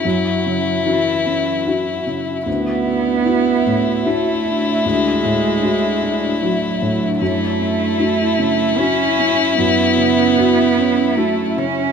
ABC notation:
X:1
M:3/4
L:1/8
Q:1/4=76
K:F#m
V:1 name="Ambient pad"
[CFe]6 | [DFe]6- | [DFe]6 | [CFe]6- |
[CFe]6 |]
V:2 name="Violin"
E6 | E6- | E6 | E6- |
E6 |]
V:3 name="Felt piano"
[F,,C] C, [EF] C [EF] C, | D,, D [EF] A,, [EF] D | D,, A,, [EF] D [EF] A,, | F,, C [EF] C, [EF] C |
F,, C, [EF] C [EF] C, |]
V:4 name="Cello"
F,2 E,2 z2 | B,4 A,2 | G,4 F,2 | A,4 C2 |
B,4 A, C |]